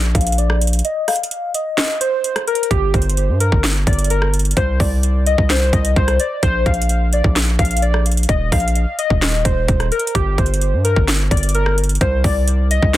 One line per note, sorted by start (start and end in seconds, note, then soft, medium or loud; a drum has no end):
0.00 0.14 A#1 loud
0.15 0.82 A#1 loud
0.15 0.37 F5 medium
0.15 kick medium
0.15 closed hi-hat medium
0.21 closed hi-hat medium
0.27 closed hi-hat medium
0.32 closed hi-hat medium
0.38 0.60 D5 medium
0.38 closed hi-hat medium
0.50 cross-stick medium
0.61 closed hi-hat medium
0.67 closed hi-hat medium
0.73 closed hi-hat medium
0.79 closed hi-hat medium
0.85 1.07 D#5 loud
0.85 closed hi-hat medium
1.08 1.52 F5 medium
1.08 cross-stick medium
1.08 closed hi-hat medium
1.08 open hi-hat medium
1.16 closed hi-hat medium
1.23 closed hi-hat medium
1.31 closed hi-hat medium
1.54 1.98 D#5 medium
1.54 closed hi-hat medium
1.78 snare loud
1.78 clap medium
1.78 closed hi-hat medium
2.01 2.45 C5 medium
2.01 closed hi-hat medium
2.24 closed hi-hat medium
2.36 cross-stick medium
2.36 closed hi-hat soft
2.47 2.69 A#4 medium
2.47 closed hi-hat soft
2.55 closed hi-hat medium
2.63 closed hi-hat medium
2.71 2.93 G1 loud
2.71 2.93 G4 loud
2.71 kick loud
2.71 closed hi-hat medium
2.94 3.30 G1 loud
2.94 3.38 C5 medium
2.94 kick loud
2.94 closed hi-hat soft
3.02 closed hi-hat medium
3.10 closed hi-hat medium
3.17 closed hi-hat medium
3.29 3.51 G2 loud
3.40 3.62 A#4 medium
3.40 closed hi-hat medium
3.52 3.86 G1 loud
3.52 kick medium
3.64 snare loud
3.64 clap medium
3.64 closed hi-hat medium
3.87 4.54 G1 loud
3.87 4.09 D5 medium
3.87 kick medium
3.87 closed hi-hat medium
3.93 closed hi-hat medium
3.99 closed hi-hat medium
4.04 closed hi-hat medium
4.10 4.32 A#4 medium
4.10 closed hi-hat medium
4.22 cross-stick medium
4.34 closed hi-hat medium
4.39 closed hi-hat medium
4.45 closed hi-hat medium
4.51 closed hi-hat medium
4.57 4.79 C2 loud
4.57 4.79 C5 loud
4.57 kick loud
4.57 closed hi-hat medium
4.80 5.36 C2 loud
4.80 5.24 D5 medium
4.80 kick loud
4.80 open hi-hat medium
5.03 closed hi-hat medium
5.26 5.48 D#5 medium
5.26 closed hi-hat medium
5.38 5.72 C2 loud
5.38 kick medium
5.50 5.72 C5 medium
5.50 snare loud
5.50 clap medium
5.50 closed hi-hat medium
5.73 5.95 C2 loud
5.73 5.95 D#5 medium
5.73 kick loud
5.73 closed hi-hat medium
5.85 closed hi-hat medium
5.96 6.19 C2 loud
5.96 6.18 C5 medium
5.96 kick loud
5.96 closed hi-hat soft
6.08 cross-stick medium
6.08 closed hi-hat medium
6.20 6.42 D5 medium
6.20 closed hi-hat medium
6.43 6.65 A#1 loud
6.43 6.65 C5 loud
6.43 kick loud
6.43 closed hi-hat medium
6.66 7.22 A#1 loud
6.66 7.10 F5 medium
6.66 kick loud
6.66 closed hi-hat soft
6.74 closed hi-hat medium
6.82 closed hi-hat medium
6.89 closed hi-hat medium
7.13 7.35 D5 medium
7.13 closed hi-hat medium
7.24 7.58 A#1 loud
7.24 kick medium
7.36 snare loud
7.36 clap medium
7.36 closed hi-hat medium
7.59 8.26 A#1 loud
7.59 7.81 F5 medium
7.59 kick loud
7.59 closed hi-hat medium
7.65 closed hi-hat medium
7.71 closed hi-hat medium
7.77 closed hi-hat medium
7.82 8.04 D5 medium
7.82 closed hi-hat medium
7.94 cross-stick medium
8.06 closed hi-hat medium
8.12 closed hi-hat medium
8.17 closed hi-hat medium
8.23 closed hi-hat medium
8.29 8.51 D#1 loud
8.29 8.51 D#5 loud
8.29 kick loud
8.29 closed hi-hat medium
8.52 8.86 A#1 loud
8.52 8.96 F5 medium
8.52 kick loud
8.52 cross-stick medium
8.52 closed hi-hat medium
8.52 open hi-hat medium
8.60 closed hi-hat medium
8.68 closed hi-hat medium
8.75 closed hi-hat medium
8.99 9.42 D#5 medium
8.99 closed hi-hat medium
9.10 9.44 D#1 loud
9.10 kick medium
9.22 snare loud
9.22 clap medium
9.22 closed hi-hat medium
9.45 9.67 D#1 loud
9.45 9.89 C5 medium
9.45 kick medium
9.45 closed hi-hat medium
9.68 9.91 D#1 loud
9.68 kick loud
9.68 closed hi-hat medium
9.80 cross-stick medium
9.80 closed hi-hat soft
9.92 10.13 A#4 medium
9.92 closed hi-hat soft
9.99 closed hi-hat medium
10.07 closed hi-hat medium
10.15 10.37 G1 loud
10.15 10.37 G4 loud
10.15 kick loud
10.15 closed hi-hat medium
10.38 10.75 G1 loud
10.38 10.82 C5 medium
10.38 kick loud
10.38 closed hi-hat soft
10.46 closed hi-hat medium
10.54 closed hi-hat medium
10.61 closed hi-hat medium
10.73 10.95 G2 loud
10.84 11.06 A#4 medium
10.84 closed hi-hat medium
10.96 11.30 G1 loud
10.96 kick medium
11.08 snare loud
11.08 clap medium
11.08 closed hi-hat medium
11.31 11.98 G1 loud
11.31 11.53 D5 medium
11.31 kick medium
11.31 closed hi-hat medium
11.37 closed hi-hat medium
11.43 closed hi-hat medium
11.49 closed hi-hat medium
11.55 11.76 A#4 medium
11.55 closed hi-hat medium
11.66 cross-stick medium
11.78 closed hi-hat medium
11.84 closed hi-hat medium
11.89 closed hi-hat medium
11.95 closed hi-hat medium
12.01 12.23 C2 loud
12.01 12.23 C5 loud
12.01 kick loud
12.01 closed hi-hat medium
12.24 12.80 C2 loud
12.24 12.68 D5 medium
12.24 kick loud
12.24 open hi-hat medium
12.48 closed hi-hat medium
12.71 12.93 D#5 medium
12.71 closed hi-hat medium
12.82 12.97 C2 loud
12.82 kick medium
12.94 snare loud
12.94 closed hi-hat medium